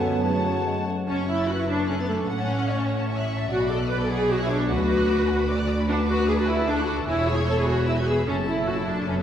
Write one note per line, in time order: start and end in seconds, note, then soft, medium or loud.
0.00 0.85 F#2 soft
0.00 0.23 D3 soft
0.00 0.23 F#3 soft
0.00 0.23 B3 soft
0.00 0.23 C#4 soft
0.00 0.23 B4 soft
0.00 0.23 C#5 soft
0.00 0.23 F#5 soft
0.00 0.23 A5 soft
0.24 0.65 C#3 soft
0.24 0.47 E3 soft
0.24 0.86 F#3 soft
0.24 0.66 A3 soft
0.24 0.86 C#4 soft
0.24 0.66 A4 soft
0.24 0.86 C#5 soft
0.24 0.86 F#5 soft
0.24 0.86 A5 soft
0.45 0.66 F#3 soft
0.66 0.87 G#3 soft
0.87 0.97 A3 soft
1.08 2.25 F#1 soft
1.08 2.25 F#2 soft
1.08 1.27 C#4 medium
1.08 1.46 C#5 soft
1.08 1.17 A5 soft
1.18 1.29 C#6 soft
1.28 1.48 E4 medium
1.28 1.39 F#6 soft
1.38 1.49 A6 soft
1.48 1.59 F#4 medium
1.48 1.90 B4 soft
1.48 1.59 F#6 soft
1.58 1.69 E4 medium
1.58 1.68 C#6 soft
1.68 1.88 D4 medium
1.68 1.78 A5 soft
1.79 1.89 C#6 soft
1.89 1.99 C#4 medium
1.89 2.29 A4 medium
1.89 1.99 F#6 soft
1.99 2.09 B3 medium
1.99 2.09 A6 soft
2.09 2.17 A3 medium
2.09 2.19 F#6 soft
2.19 2.29 C#6 soft
2.29 3.48 A1 soft
2.29 3.47 A2 soft
2.29 3.28 C#4 medium
2.29 2.69 F#5 medium
2.29 2.39 F#5 soft
2.39 2.49 A5 soft
2.50 2.59 C#6 soft
2.59 2.69 F#6 soft
2.70 3.10 C#5 medium
2.70 2.80 C#6 soft
2.80 2.90 A5 soft
2.90 3.00 F#5 soft
3.00 3.10 A5 soft
3.09 3.49 E5 medium
3.09 3.19 C#6 soft
3.19 3.30 F#6 soft
3.29 3.39 C#6 soft
3.39 3.50 A5 soft
3.49 4.68 B1 soft
3.49 4.68 B2 medium
3.49 3.69 F#4 medium
3.49 3.90 D5 medium
3.49 3.59 F#5 medium
3.59 3.70 B5 soft
3.69 3.78 A4 medium
3.69 3.80 D6 soft
3.79 3.90 F#6 soft
3.89 4.00 B4 medium
3.89 4.30 D5 medium
3.89 4.00 D6 soft
4.00 4.10 A4 medium
4.00 4.10 B5 soft
4.10 4.30 G#4 medium
4.10 4.20 F#5 soft
4.20 4.30 B5 medium
4.30 4.40 F#4 medium
4.30 4.70 C#5 medium
4.30 4.40 D6 medium
4.39 4.51 E4 medium
4.39 4.50 F#6 soft
4.49 4.70 D4 medium
4.49 4.60 D6 medium
4.59 4.70 B5 soft
4.69 7.08 D2 medium
4.69 5.70 F#4 medium
4.69 5.49 B4 medium
4.69 4.79 F#5 medium
4.80 4.90 B5 soft
4.89 5.00 D6 soft
5.00 5.10 F#6 soft
5.10 5.20 D6 soft
5.20 5.30 B5 medium
5.29 5.40 F#5 soft
5.40 5.50 B5 medium
5.49 5.89 D5 medium
5.49 5.60 D6 medium
5.60 5.70 F#6 medium
5.69 5.79 D6 medium
5.79 5.89 B5 medium
5.89 5.97 D4 medium
5.89 6.67 B4 medium
5.89 5.98 F#5 medium
5.99 6.09 A5 medium
6.09 6.29 F#4 medium
6.09 6.19 D6 medium
6.19 6.29 F#6 medium
6.29 6.33 G#4 medium
6.29 6.39 D6 medium
6.39 6.49 F#4 medium
6.39 6.49 A5 medium
6.48 6.69 E4 medium
6.48 6.59 F#5 medium
6.59 6.69 A5 medium
6.68 6.78 D4 medium
6.68 7.08 A4 medium
6.68 6.79 D6 soft
6.79 6.87 F#4 medium
6.79 6.89 F#6 medium
6.88 6.96 F#4 medium
6.88 6.98 D6 medium
6.99 7.08 A5 soft
7.07 8.25 E1 medium
7.07 8.25 E2 medium
7.07 7.27 E4 medium
7.07 7.86 C#5 medium
7.07 7.17 G#5 medium
7.18 7.28 B5 soft
7.27 7.48 G#4 medium
7.27 7.38 E6 soft
7.38 7.48 G#6 medium
7.47 7.57 A4 medium
7.47 7.58 E6 soft
7.57 7.68 G#4 medium
7.57 7.68 B5 soft
7.68 7.88 F#4 medium
7.68 7.78 G#5 soft
7.78 7.88 B5 soft
7.88 7.92 E4 medium
7.88 8.27 B4 medium
7.88 7.98 E6 soft
7.99 8.08 F#4 medium
7.99 8.08 G#6 medium
8.08 8.27 G#4 medium
8.08 8.17 E6 soft
8.18 8.28 B5 soft
8.27 9.03 F#1 medium
8.27 9.03 F#2 medium
8.27 8.35 C#4 medium
8.27 8.66 A4 medium
8.27 8.64 A5 medium
8.47 8.66 E4 medium
8.67 8.77 F#4 medium
8.67 9.23 A4 medium
8.67 9.06 A5 medium
8.78 8.87 E4 medium
8.87 9.07 D4 medium
9.07 9.23 F#1 soft
9.07 9.23 F#2 soft
9.07 9.17 C#4 medium
9.07 9.23 B4 soft
9.19 9.23 B3 medium